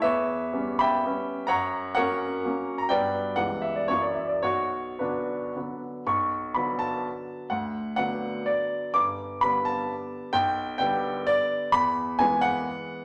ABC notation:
X:1
M:3/4
L:1/16
Q:1/4=126
K:Bm
V:1 name="Grand piano"
[Bce]6 [egb]6 | [cf^a]4 [^Acf]6- [Acf] a | [Bdg]4 f2 e d c d e d | [Fc]4 [DFB]6 z2 |
c'4 b2 a6 | f4 f4 d4 | d'4 b2 a6 | g4 g4 d4 |
[K:E] b4 g2 f6 |]
V:2 name="Grand piano" clef=bass
E,,4 [G,B,C]4 [G,B,C]4 | F,,4 [F,^A,C]4 [F,A,C]4 | [G,,F,B,]4 [C,,E,G,B,]4 [F,,E,F,^A,]4 | B,,,4 [D,F,B,]4 [D,F,B,]4 |
B,,,4 [D,F,B,]8 | D,,4 [D,F,B,]8 | G,,,4 [D,G,B,]8 | B,,,4 [D,G,B,]8 |
[K:E] E,,4 [E,G,B,]8 |]